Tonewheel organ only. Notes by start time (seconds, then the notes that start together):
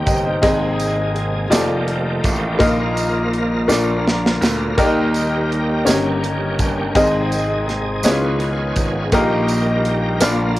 Already playing: C3 G3 A#3 G4
0.42 G#3 G#4
1.51 D#3 F3 A3 G4
2.60 D#3 A#3 F4 A#4
3.69 D3
4.77 D#3 G3 A#3 G4 A#4
5.87 D#3 C#4
6.96 C3 G#3 D#4 G#4
8.05 D#3 B3 C#4 F4 G#4
9.13 G3 A#3 G4 A#4
10.22 D3 F3 F4